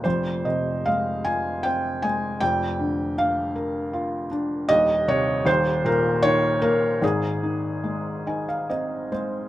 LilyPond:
<<
  \new Staff \with { instrumentName = "Felt piano" } { \time 3/4 \key aes \major \tempo 4 = 77 << { r2. | r2. | r2. | r4. aes''16 f''16 ees''8 c''8 | } \\ { c''8 ees''8 f''8 aes''8 g''8 aes''8 | g''4 f''4. r8 | ees''8 des''8 c''8 bes'8 des''8 bes'8 | aes'2 r4 | } >> }
  \new Staff \with { instrumentName = "Felt piano" } { \clef bass \time 3/4 \key aes \major <f,, f,>8 c8 aes8 f'8 c'8 aes8 | <f,, f,>8 d8 d'8 bes'8 f'8 d'8 | <ees,, ees,>8 c8 <ees,, ees,>8 bes,8 ees8 bes8 | <aes,, aes,>8 ees8 aes8 ees'8 c'8 aes8 | }
>>